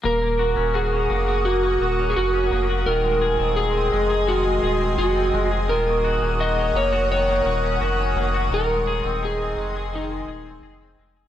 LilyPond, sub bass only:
\new Staff \with { instrumentName = "Sub bass" } { \clef bass \time 4/4 \key ees \dorian \tempo 4 = 85 ees,,8. ees,,8. f,,4 ees,,8 f,,8 f,,8 | ees,,8. ees,,8. f,,4 ees,,8 f,,8 f,,8 | ees,,8. ees,,8. f,,4 ees,,8 f,,8 f,,8 | ees,,8. ees,,8. f,,4 ees,,8 f,,8 f,,8 | }